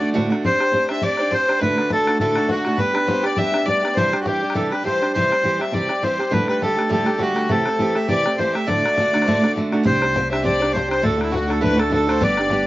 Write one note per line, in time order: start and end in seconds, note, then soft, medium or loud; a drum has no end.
0.00 0.13 D3 medium
0.00 0.14 A3 medium
0.00 0.13 D4 medium
0.00 0.14 F#4 medium
0.00 0.14 D5 medium
0.14 0.30 D2 medium
0.14 0.30 A2 medium
0.14 0.30 D3 medium
0.14 0.30 A3 medium
0.14 0.30 D4 medium
0.14 0.29 F#4 medium
0.14 bodhran medium
0.30 0.44 D3 soft
0.30 0.44 A3 medium
0.30 0.44 D4 medium
0.30 0.43 F#4 medium
0.30 bodhran soft
0.44 0.60 C4 medium
0.44 0.60 D4 medium
0.44 0.59 G4 medium
0.44 0.91 C5 medium
0.44 0.87 C5 loud
0.44 0.58 C5 medium
0.44 bodhran medium
0.59 0.71 D4 soft
0.59 0.72 G4 medium
0.59 0.72 C5 soft
0.59 bodhran medium
0.72 0.88 C4 medium
0.72 0.89 D4 medium
0.72 0.89 G4 medium
0.72 0.87 C5 medium
0.72 bodhran medium
0.89 1.02 D4 soft
0.89 1.02 G4 soft
0.89 1.02 C5 medium
0.89 1.04 E5 medium
0.89 bodhran medium
1.02 1.18 C4 medium
1.02 1.19 D4 medium
1.02 1.19 G4 medium
1.02 1.18 C5 medium
1.02 1.33 D5 medium
1.02 1.34 D5 medium
1.02 bodhran medium
1.17 1.30 D4 soft
1.17 1.31 G4 soft
1.17 1.32 C5 medium
1.17 bodhran soft
1.31 1.47 C4 medium
1.31 1.47 D4 soft
1.31 1.47 G4 medium
1.31 1.60 C5 medium
1.31 1.46 C5 medium
1.31 1.60 C5 loud
1.31 bodhran medium
1.47 1.60 D4 soft
1.47 1.61 G4 soft
1.47 1.61 C5 soft
1.47 bodhran medium
1.59 1.77 D2 medium
1.59 1.77 A2 medium
1.59 1.77 D3 medium
1.59 1.76 A3 medium
1.59 1.77 D4 medium
1.59 1.76 F#4 medium
1.59 1.91 B4 medium
1.59 1.91 B4 loud
1.59 bodhran medium
1.77 1.90 D3 soft
1.77 1.90 A3 soft
1.77 1.90 D4 soft
1.77 1.90 F#4 soft
1.77 bodhran medium
1.90 2.07 D3 medium
1.90 2.06 A3 medium
1.90 2.07 D4 medium
1.90 2.06 F#4 medium
1.90 2.19 A4 medium
1.90 2.18 A4 loud
1.90 bodhran medium
2.07 2.20 D3 soft
2.07 2.20 A3 soft
2.07 2.21 D4 soft
2.07 2.20 F#4 medium
2.07 bodhran medium
2.20 2.36 D2 medium
2.20 2.36 A2 medium
2.20 2.36 D3 medium
2.20 2.36 A3 medium
2.20 2.36 D4 medium
2.20 2.35 F#4 medium
2.20 2.50 A4 medium
2.20 bodhran medium
2.36 2.49 D3 soft
2.36 2.50 A3 medium
2.36 2.50 D4 soft
2.36 2.49 F#4 medium
2.36 bodhran medium
2.49 2.66 D3 medium
2.49 2.66 A3 medium
2.49 2.66 D4 medium
2.49 2.79 F#4 medium
2.49 2.80 F#4 medium
2.49 bodhran medium
2.53 2.65 F#4 medium
2.65 2.78 D3 soft
2.65 2.79 A3 medium
2.65 2.79 D4 soft
2.65 2.79 F#4 medium
2.65 bodhran medium
2.77 2.95 G3 medium
2.77 2.95 B3 medium
2.77 2.94 D4 medium
2.77 2.92 G4 medium
2.77 3.09 B4 medium
2.77 3.25 B4 loud
2.77 bodhran medium
2.93 3.06 B3 soft
2.93 3.07 D4 soft
2.93 3.07 G4 soft
2.93 bodhran medium
3.07 3.23 G3 medium
3.07 3.24 B3 medium
3.07 3.23 D4 medium
3.07 3.22 G4 medium
3.07 3.26 C5 medium
3.07 bodhran medium
3.23 3.36 B3 soft
3.23 3.37 D4 soft
3.23 3.37 G4 medium
3.23 3.40 D5 medium
3.23 3.38 D5 loud
3.23 bodhran medium
3.37 3.53 G3 medium
3.37 3.53 B3 medium
3.37 3.52 D4 medium
3.37 3.51 G4 medium
3.37 3.67 E5 medium
3.37 3.68 E5 loud
3.37 bodhran medium
3.52 3.66 B3 soft
3.52 3.67 D4 medium
3.52 3.66 G4 soft
3.52 bodhran medium
3.66 3.82 G3 medium
3.66 3.83 B3 medium
3.66 3.82 D4 medium
3.66 3.81 G4 medium
3.66 3.96 D5 medium
3.66 3.98 D5 loud
3.66 bodhran medium
3.83 3.97 B3 soft
3.83 3.96 D4 medium
3.83 3.96 G4 medium
3.83 bodhran medium
3.94 4.13 C3 medium
3.94 4.13 E3 medium
3.94 4.13 G3 medium
3.94 4.12 D4 medium
3.94 4.12 G4 medium
3.94 4.18 C5 medium
3.94 4.20 C5 loud
3.94 bodhran medium
4.13 4.25 G3 soft
4.13 4.26 D4 soft
4.13 4.26 G4 medium
4.13 bodhran medium
4.21 4.26 F#4 medium
4.21 4.57 G4 medium
4.25 4.41 E3 medium
4.25 4.42 G3 medium
4.25 4.41 D4 medium
4.25 4.40 G4 medium
4.25 4.54 G4 medium
4.25 bodhran medium
4.42 4.54 G3 soft
4.42 4.54 D4 soft
4.42 4.55 G4 medium
4.50 bodhran medium
4.54 4.71 C3 medium
4.54 4.71 E3 medium
4.54 4.71 G3 medium
4.54 4.71 D4 medium
4.54 4.71 G4 medium
4.54 4.72 A4 medium
4.54 4.71 A4 medium
4.54 bodhran medium
4.71 4.83 G3 soft
4.71 4.84 D4 soft
4.71 4.84 G4 soft
4.71 4.83 B4 medium
4.71 4.86 B4 medium
4.71 bodhran medium
4.83 5.00 E3 medium
4.83 5.00 G3 medium
4.83 5.01 D4 medium
4.83 5.00 G4 medium
4.83 5.13 C5 medium
4.83 5.12 C5 loud
4.83 bodhran medium
5.02 5.15 G3 soft
5.02 5.14 D4 medium
5.02 5.14 G4 soft
5.02 bodhran medium
5.14 5.31 C3 medium
5.14 5.31 E3 medium
5.14 5.31 G3 medium
5.14 5.31 C4 medium
5.14 5.30 G4 medium
5.14 5.63 C5 medium
5.14 5.61 C5 loud
5.14 bodhran medium
5.31 5.43 G3 soft
5.31 5.44 C4 soft
5.31 5.44 G4 soft
5.31 bodhran medium
5.43 5.59 E3 medium
5.43 5.60 G3 medium
5.43 5.60 C4 medium
5.43 5.58 G4 medium
5.43 bodhran medium
5.59 5.71 G3 soft
5.59 5.72 C4 soft
5.59 5.72 G4 soft
5.59 5.67 E5 medium
5.59 5.76 E5 medium
5.59 bodhran medium
5.72 5.88 C3 medium
5.72 5.89 E3 medium
5.72 5.88 G3 medium
5.72 5.88 C4 medium
5.72 5.87 G4 medium
5.72 6.03 D5 medium
5.72 6.06 D5 medium
5.72 bodhran medium
5.89 6.01 G3 soft
5.89 6.03 C4 soft
5.89 6.02 G4 medium
5.89 bodhran medium
6.03 6.18 E3 medium
6.03 6.18 G3 medium
6.03 6.19 C4 medium
6.03 6.18 G4 medium
6.03 6.33 C5 medium
6.03 6.34 C5 medium
6.03 bodhran medium
6.19 6.31 G3 soft
6.19 6.32 C4 soft
6.19 6.31 G4 medium
6.19 bodhran soft
6.31 6.47 D2 medium
6.31 6.47 A2 medium
6.31 6.47 D3 medium
6.31 6.48 G3 medium
6.31 6.48 A3 medium
6.31 6.48 G4 medium
6.31 6.47 B4 loud
6.31 6.48 B4 medium
6.31 bodhran medium
6.48 6.61 D3 soft
6.48 6.62 G3 soft
6.48 6.62 A3 medium
6.48 6.62 G4 medium
6.48 6.61 B4 medium
6.48 6.62 B4 medium
6.48 bodhran medium
6.62 6.77 D3 medium
6.62 6.77 G3 medium
6.62 6.76 A3 medium
6.62 6.75 G4 medium
6.62 6.91 A4 medium
6.62 6.89 A4 medium
6.62 bodhran medium
6.77 6.88 D3 soft
6.77 6.89 G3 soft
6.77 6.89 A3 soft
6.77 6.89 G4 soft
6.77 bodhran medium
6.89 7.06 D2 medium
6.89 7.06 A2 medium
6.89 7.06 D3 medium
6.89 7.06 G3 medium
6.89 7.05 A3 medium
6.89 7.04 G4 medium
6.89 7.07 A4 medium
6.89 7.22 A4 medium
6.89 bodhran medium
7.05 7.17 D3 soft
7.05 7.17 G3 soft
7.05 7.18 A3 medium
7.05 7.19 G4 soft
7.05 7.21 G4 medium
7.05 bodhran medium
7.18 7.35 D3 medium
7.18 7.35 G3 medium
7.18 7.34 A3 medium
7.18 7.51 F#4 medium
7.18 7.51 F#4 loud
7.18 7.33 G4 medium
7.18 bodhran medium
7.34 7.49 D3 soft
7.34 7.49 G3 soft
7.34 7.49 A3 soft
7.34 7.49 G4 medium
7.34 bodhran medium
7.49 7.65 C3 medium
7.49 7.66 E3 medium
7.49 7.65 A3 medium
7.49 7.66 C4 medium
7.49 7.64 G4 medium
7.49 8.09 A4 medium
7.49 7.97 A4 medium
7.49 bodhran medium
7.65 7.79 A3 soft
7.65 7.79 C4 soft
7.65 7.79 G4 medium
7.65 bodhran medium
7.79 7.95 E3 medium
7.79 7.95 A3 medium
7.79 7.96 C4 medium
7.79 7.94 G4 medium
7.79 bodhran medium
7.95 8.08 A3 soft
7.95 8.08 C4 soft
7.95 8.09 G4 soft
7.95 8.09 E5 medium
7.95 bodhran medium
8.08 8.25 C3 medium
8.08 8.25 E3 medium
8.08 8.24 A3 medium
8.08 8.25 C4 medium
8.08 8.24 G4 medium
8.08 8.39 D5 medium
8.08 8.36 D5 medium
8.08 bodhran medium
8.25 8.39 A3 soft
8.25 8.38 C4 soft
8.25 8.38 G4 medium
8.25 bodhran medium
8.38 8.54 E3 medium
8.38 8.54 A3 medium
8.38 8.55 C4 medium
8.38 8.54 G4 medium
8.38 8.55 C5 medium
8.38 bodhran medium
8.54 8.66 A3 medium
8.54 8.67 C4 soft
8.54 8.68 G4 medium
8.54 8.69 E5 medium
8.54 8.68 E5 medium
8.54 bodhran medium
8.67 8.84 D2 medium
8.67 8.84 A2 medium
8.67 8.84 D3 medium
8.67 8.84 A3 medium
8.67 8.84 D4 medium
8.67 8.83 F#4 medium
8.67 8.96 D5 medium
8.67 9.52 D5 loud
8.67 bodhran medium
8.84 8.96 D3 soft
8.84 8.98 A3 soft
8.84 8.98 D4 soft
8.84 8.97 F#4 medium
8.84 bodhran medium
8.94 9.14 D3 medium
8.94 9.24 D5 medium
8.94 8.98 E5 soft
8.94 bodhran medium
8.99 9.13 A3 medium
8.99 9.13 D4 medium
8.99 9.12 F#4 medium
9.13 9.26 D3 soft
9.13 9.27 A3 medium
9.13 9.26 D4 medium
9.13 9.27 F#4 medium
9.13 bodhran medium
9.22 9.27 C5 soft
9.22 9.55 D5 medium
9.22 bodhran medium
9.26 9.43 D2 medium
9.26 9.43 A2 medium
9.26 9.43 D3 medium
9.26 9.43 A3 medium
9.26 9.42 D4 medium
9.26 9.41 F#4 medium
9.26 bodhran medium
9.42 9.54 D3 soft
9.42 9.56 A3 medium
9.42 9.56 D4 soft
9.42 9.56 F#4 medium
9.42 bodhran medium
9.56 9.72 D3 medium
9.56 9.73 A3 medium
9.56 9.72 D4 medium
9.56 9.71 F#4 medium
9.56 bodhran medium
9.72 9.84 D3 soft
9.72 9.85 A3 medium
9.72 9.84 D4 medium
9.72 9.85 F#4 medium
9.72 bodhran medium
9.84 11.02 C2 medium
9.84 10.01 C4 medium
9.84 10.02 D4 medium
9.84 10.02 G4 medium
9.84 10.27 C5 medium
9.84 10.01 C5 medium
9.84 10.28 C5 loud
9.84 bodhran medium
10.02 10.14 D4 soft
10.02 10.16 G4 soft
10.02 10.15 C5 medium
10.02 bodhran medium
10.15 10.31 C4 medium
10.15 10.32 D4 medium
10.15 10.31 G4 medium
10.15 10.29 C5 medium
10.15 bodhran medium
10.31 10.43 D4 soft
10.31 10.43 G4 soft
10.31 10.44 C5 soft
10.31 10.44 E5 medium
10.31 bodhran medium
10.44 10.60 C4 medium
10.44 10.61 D4 medium
10.44 10.60 G4 medium
10.44 10.59 C5 medium
10.44 10.72 D5 medium
10.44 10.74 D5 medium
10.44 bodhran medium
10.60 10.73 D4 soft
10.60 10.74 G4 soft
10.60 10.74 C5 medium
10.60 bodhran medium
10.72 10.90 C4 medium
10.72 10.89 D4 medium
10.72 10.87 G4 medium
10.72 10.89 C5 medium
10.72 10.87 C5 medium
10.72 bodhran medium
10.88 11.02 D4 soft
10.88 11.03 G4 soft
10.88 11.03 C5 medium
10.88 11.05 C5 medium
10.88 11.04 C5 medium
10.88 bodhran medium
11.02 11.19 D2 medium
11.02 12.18 D2 medium
11.02 11.19 A2 medium
11.02 11.18 D3 medium
11.02 11.16 A3 medium
11.02 11.18 D4 medium
11.02 11.16 F#4 medium
11.02 11.33 A4 medium
11.02 11.20 A4 loud
11.02 bodhran medium
11.17 11.29 D3 soft
11.17 11.31 A3 medium
11.17 11.30 D4 soft
11.17 11.31 F#4 medium
11.17 bodhran medium
11.23 11.35 E4 medium
11.30 11.48 D3 medium
11.30 11.47 A3 medium
11.30 11.48 D4 medium
11.30 11.50 F#4 medium
11.30 11.46 F#4 medium
11.30 bodhran medium
11.35 11.49 F#4 medium
11.48 11.60 D3 soft
11.48 11.61 A3 soft
11.48 11.61 D4 medium
11.48 11.61 F#4 medium
11.48 11.62 A4 medium
11.48 bodhran medium
11.61 11.78 D2 medium
11.61 11.78 A2 medium
11.61 11.77 D3 medium
11.61 11.76 A3 medium
11.61 11.77 D4 medium
11.61 11.75 F#4 medium
11.61 11.78 B4 medium
11.61 11.81 B4 medium
11.61 bodhran medium
11.76 11.89 D3 soft
11.76 11.90 A3 medium
11.76 11.90 D4 medium
11.76 11.91 F#4 medium
11.76 11.92 A4 medium
11.76 bodhran medium
11.90 12.07 D3 medium
11.90 12.07 A3 medium
11.90 12.07 D4 medium
11.90 12.06 F#4 medium
11.90 12.23 A4 loud
11.90 bodhran medium
11.94 12.08 A4 medium
12.07 12.20 D3 medium
12.07 12.21 A3 medium
12.07 12.20 D4 soft
12.07 12.21 F#4 medium
12.07 12.25 C5 medium
12.07 bodhran medium
12.20 12.67 G1 medium
12.20 12.37 G3 medium
12.20 12.37 B3 medium
12.20 12.37 D4 medium
12.20 12.37 G4 medium
12.20 12.67 D5 loud
12.20 12.67 D5 medium
12.20 bodhran medium
12.37 12.50 B3 soft
12.37 12.50 D4 medium
12.37 12.51 G4 soft
12.37 bodhran medium
12.50 12.67 G3 medium
12.50 12.67 B3 medium
12.50 12.66 D4 medium
12.50 12.66 G4 medium
12.50 bodhran medium